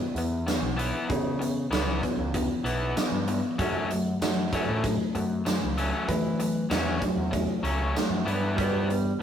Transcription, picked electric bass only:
0.15 0.57 E2 medium
0.61 0.90 B1 medium
1.10 1.66 C#3 medium
1.70 1.99 C#2 medium
2.17 2.46 C#2 medium
2.64 2.92 B1 medium
3.12 3.40 G2 medium
3.59 4.15 F#2 medium
4.21 4.63 F#2 medium
4.69 4.96 A2 medium
5.15 5.57 F#2 medium
5.63 5.91 C#2 medium
6.08 6.65 E3 medium
6.70 6.99 E2 medium
7.16 7.45 E2 medium
7.63 7.92 C#2 medium
8.10 8.25 F#2 medium
8.27 9.11 G2 loud

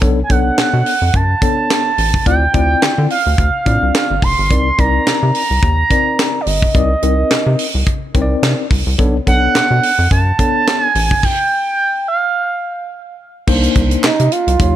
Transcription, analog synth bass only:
0.02 0.23 B1 loud
0.30 0.51 B1 medium
0.58 0.64 B2 soft
0.73 0.83 B2 loud
1.02 1.11 F2 medium
1.14 1.35 F#2 medium
1.98 2.19 A1 medium
2.26 2.47 D2 loud
2.54 2.75 D2 loud
2.82 2.88 D3 soft
2.98 3.07 D3 loud
3.26 3.35 D2 medium
3.38 3.50 D2 medium
3.66 3.78 A2 medium
3.82 3.91 C2 medium
4.11 4.20 G1 medium
4.22 4.34 F1 medium
4.38 4.52 G1 medium
4.51 4.71 C2 medium
4.79 5.00 C2 medium
5.07 5.13 C3 soft
5.23 5.32 C3 loud
5.50 5.60 C2 medium
5.63 5.84 D#2 medium
6.47 6.68 G1 medium
6.75 6.96 C2 loud
7.03 7.24 C2 loud
7.31 7.37 C3 soft
7.46 7.56 C3 loud
7.75 7.84 C2 medium
8.15 8.36 C2 medium
8.43 8.54 C3 loud
8.71 8.83 C2 medium
8.86 8.96 C2 loud
8.99 9.20 B1 loud
9.27 9.48 B1 medium
9.55 9.61 B2 soft
9.71 9.80 B2 loud
9.98 10.08 F2 medium
10.11 10.32 F#2 loud
10.95 11.16 A1 loud
13.48 13.69 C2 loud
13.76 13.97 C2 medium
14.04 14.10 C3 soft
14.20 14.29 C3 medium
14.47 14.57 C2 medium
14.60 14.76 D#2 loud

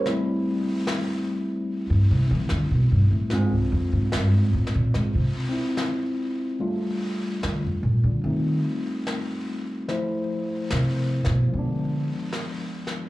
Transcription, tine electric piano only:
0.00 0.15 C#5 soft
0.07 3.31 G3 soft
0.07 3.32 A3 soft
0.07 3.31 C4 soft
0.07 3.32 E4 soft
3.32 6.61 G#3 soft
3.32 5.48 C4 soft
3.32 6.60 D4 soft
3.32 6.60 F4 soft
5.49 6.60 C4 soft
5.49 6.61 E4 soft
6.59 9.89 G3 soft
6.59 8.23 A3 soft
6.59 9.89 D4 soft
6.59 9.89 F4 soft
8.25 9.88 A3 soft
8.25 9.90 C4 soft
8.25 9.90 D#4 soft
9.89 11.46 F3 soft
9.89 11.52 A3 soft
9.89 11.52 E4 soft
9.89 11.52 C5 soft
11.48 13.09 F3 soft
11.52 13.09 G#3 soft
11.52 13.09 B3 soft
11.59 13.09 D4 soft

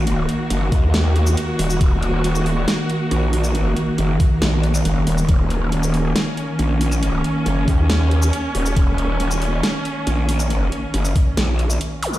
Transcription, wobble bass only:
0.00 0.27 A#1 loud
0.50 0.70 F#1 loud
0.72 1.36 D#2 loud
1.59 1.79 D#1 loud
1.81 2.66 D#1 medium
3.11 3.75 A#1 medium
3.98 4.18 F#1 medium
4.42 4.83 A#1 loud
4.85 5.05 F#1 loud
5.07 5.27 D#1 loud
5.29 6.14 D#1 loud
6.59 7.23 A#1 loud
7.46 7.66 F#1 loud
7.68 8.31 D#2 loud
8.55 8.75 D#1 loud
8.76 9.62 D#1 loud
10.07 10.70 A#1 medium
10.94 11.14 F#1 loud
11.37 11.79 A#1 loud

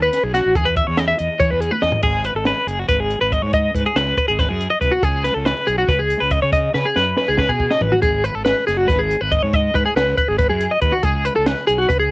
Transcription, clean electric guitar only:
0.02 0.23 B4 medium
0.23 0.33 G#4 medium
0.34 0.55 F#4 medium
0.55 0.66 G#4 medium
0.65 0.76 B4 medium
0.77 0.87 E5 medium
0.87 0.98 C#5 medium
0.98 1.07 D#5 medium
1.08 1.18 E5 medium
1.18 1.40 D#5 medium
1.40 1.50 C#5 medium
1.50 1.61 B4 medium
1.61 1.71 G#4 medium
1.71 1.82 B4 medium
1.82 2.03 D#5 medium
2.03 2.25 G#4 medium
2.25 2.36 B4 medium
2.36 2.46 A4 medium
2.46 2.67 B4 medium
2.67 2.79 G#4 medium
2.79 2.88 F#4 medium
2.88 3.00 B4 medium
3.00 3.20 G#4 medium
3.21 3.32 B4 medium
3.32 3.42 D#5 medium
3.42 3.53 C#5 medium
3.54 3.75 D#5 medium
3.75 3.85 B4 medium
3.86 3.96 G#4 medium
3.96 4.17 B4 medium
4.18 4.28 B4 medium
4.28 4.39 G#4 medium
4.39 4.49 B4 medium
4.49 4.70 G#4 medium
4.71 4.81 D#5 medium
4.81 4.92 B4 medium
4.92 5.03 F#4 medium
5.03 5.25 G#4 medium
5.25 5.35 B4 medium
5.35 5.45 A4 medium
5.45 5.67 B4 medium
5.67 5.78 G#4 medium
5.78 5.89 F#4 medium
5.89 6.00 B4 medium
5.99 6.21 G#4 medium
6.21 6.32 B4 medium
6.32 6.42 D#5 medium
6.42 6.53 C#5 medium
6.53 6.74 D#5 medium
6.75 6.85 B4 medium
6.86 6.96 G#4 medium
6.96 7.16 B4 medium
7.18 7.28 B4 medium
7.28 7.39 G#4 medium
7.39 7.50 B4 medium
7.49 7.71 G#4 medium
7.71 7.82 D#5 medium
7.82 7.93 B4 medium
7.92 8.02 F#4 medium
8.02 8.24 G#4 medium
8.24 8.35 B4 medium
8.35 8.44 A4 medium
8.45 8.66 B4 medium
8.67 8.77 G#4 medium
8.77 8.89 F#4 medium
8.88 8.99 B4 medium
8.99 9.21 G#4 medium
9.21 9.32 B4 medium
9.32 9.43 D#5 medium
9.43 9.54 C#5 medium
9.54 9.75 D#5 medium
9.75 9.85 B4 medium
9.85 9.96 G#4 medium
9.96 10.16 B4 medium
10.18 10.29 B4 medium
10.29 10.38 G#4 medium
10.39 10.49 B4 medium
10.50 10.71 G#4 medium
10.71 10.81 D#5 medium
10.82 10.93 B4 medium
10.92 11.03 F#4 medium
11.03 11.25 G#4 medium
11.25 11.35 B4 medium
11.36 11.46 A4 medium
11.46 11.67 B4 medium
11.67 11.78 G#4 medium
11.78 11.89 F#4 medium
11.89 11.99 B4 medium
12.00 12.11 G#4 medium

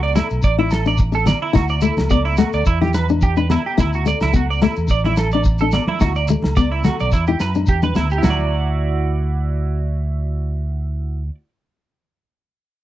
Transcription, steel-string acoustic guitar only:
0.16 0.38 A3 medium
0.59 0.80 E4 medium
0.86 1.08 D4 medium
1.12 1.23 D4 medium
1.26 1.48 B3 medium
1.53 1.76 E4 medium
1.82 2.04 A3 medium
2.10 2.32 B3 medium
2.38 2.60 A3 medium
2.81 3.03 E4 medium
3.10 3.31 D4 medium
3.37 3.47 D4 medium
3.50 3.72 B3 medium
3.78 4.00 E4 medium
4.06 4.28 A3 medium
4.33 4.55 B3 medium
4.62 4.84 A3 medium
5.06 5.27 E4 medium
5.35 5.55 D4 medium
5.62 5.71 D4 medium
5.74 5.96 B3 medium
6.02 6.23 E4 medium
6.30 6.51 A3 medium
6.57 6.79 B3 medium
6.85 7.06 A3 medium
7.28 7.50 E4 medium
7.56 7.77 D4 medium
7.83 7.93 D4 medium
7.96 8.18 B3 medium
8.23 muted steel-string acoustic guitar stroke medium

